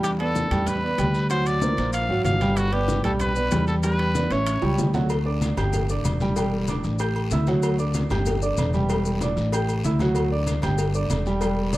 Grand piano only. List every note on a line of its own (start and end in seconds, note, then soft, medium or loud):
0.00 0.14 G3 medium
0.00 0.15 G4 medium
0.00 0.15 G5 medium
0.20 0.46 B3 medium
0.20 0.46 B4 medium
0.20 0.46 D5 medium
0.51 0.77 G3 medium
0.51 0.77 G4 medium
0.51 0.78 G5 medium
0.83 0.96 B3 medium
0.83 0.96 B4 medium
0.83 0.96 D5 medium
0.99 1.25 G3 medium
0.99 1.25 G4 medium
0.99 1.25 G5 medium
1.30 1.56 F#3 medium
1.30 1.56 F#4 medium
1.30 1.56 F#5 medium
1.62 1.75 A#3 medium
1.62 1.75 A#4 medium
1.62 1.76 C5 medium
1.79 2.04 A#3 medium
1.79 2.04 A#4 medium
1.79 2.04 C5 medium
2.10 2.35 F#3 medium
2.10 2.36 F#4 medium
2.10 2.36 F#5 medium
2.41 2.67 G3 medium
2.41 2.67 G4 medium
2.41 2.67 G5 medium
2.72 2.98 B3 medium
2.72 2.98 B4 medium
2.72 2.99 D5 medium
3.04 3.30 G3 medium
3.04 3.30 G4 medium
3.04 3.31 G5 loud
3.36 3.49 B3 medium
3.36 3.49 B4 medium
3.36 3.49 D5 medium
3.52 3.78 G3 medium
3.52 3.78 G4 medium
3.52 3.78 G5 medium
3.83 4.09 G3 medium
3.83 4.09 G4 medium
3.83 4.10 G5 medium
4.15 4.28 B3 medium
4.15 4.28 B4 medium
4.15 4.29 D5 medium
4.32 4.57 C#4 medium
4.32 4.57 C#5 medium
4.32 4.57 E5 medium
4.63 4.89 G3 medium
4.63 4.89 G4 medium
4.63 4.89 G5 medium
4.94 5.07 F#3 medium
4.94 5.07 F#4 medium
4.94 5.07 F#5 medium
5.26 5.52 D4 medium
5.26 5.52 D5 medium
5.26 5.52 D6 medium
5.57 5.83 G4 medium
5.57 5.84 G5 medium
5.57 5.84 G6 medium
5.90 6.15 D4 medium
5.90 6.16 D5 medium
5.90 6.16 D6 medium
6.21 6.34 G3 medium
6.21 6.34 G4 medium
6.21 6.34 G5 medium
6.37 6.63 G3 medium
6.37 6.63 G4 medium
6.37 6.63 G5 medium
6.69 6.94 D4 medium
6.69 6.94 D5 medium
6.69 6.95 D6 medium
7.00 7.26 G4 medium
7.00 7.26 G5 medium
7.00 7.26 G6 medium
7.32 7.45 E4 medium
7.32 7.45 E5 medium
7.32 7.45 E6 medium
7.48 7.73 F#3 loud
7.48 7.74 F#4 medium
7.48 7.74 F#5 medium
7.79 8.05 D4 medium
7.79 8.05 D5 medium
7.79 8.05 D6 medium
8.11 8.37 G4 medium
8.11 8.37 G5 medium
8.11 8.37 G6 medium
8.42 8.68 D4 medium
8.42 8.68 D5 medium
8.42 8.68 D6 medium
8.74 8.87 G3 medium
8.74 8.87 G4 medium
8.74 8.87 G5 medium
8.90 9.16 G3 medium
8.90 9.16 G4 medium
8.90 9.16 G5 medium
9.22 9.47 D4 medium
9.22 9.48 D5 medium
9.22 9.48 D6 medium
9.53 9.79 G4 medium
9.53 9.79 G5 medium
9.53 9.79 G6 medium
9.85 9.97 E4 medium
9.85 9.98 E5 medium
9.85 9.98 E6 medium
10.00 10.26 F#3 medium
10.00 10.27 F#4 medium
10.00 10.27 F#5 medium
10.32 10.58 D4 medium
10.32 10.58 D5 medium
10.32 10.58 D6 medium
10.63 10.89 G4 medium
10.63 10.89 G5 medium
10.63 10.89 G6 medium
10.95 11.21 D4 medium
10.95 11.21 D5 medium
10.95 11.21 D6 medium
11.26 11.39 G3 medium
11.26 11.39 G4 medium
11.26 11.39 G5 medium
11.42 11.68 G3 medium
11.42 11.68 G4 medium
11.42 11.68 G5 medium
11.74 11.78 D4 medium
11.74 11.78 D5 medium
11.74 11.78 D6 medium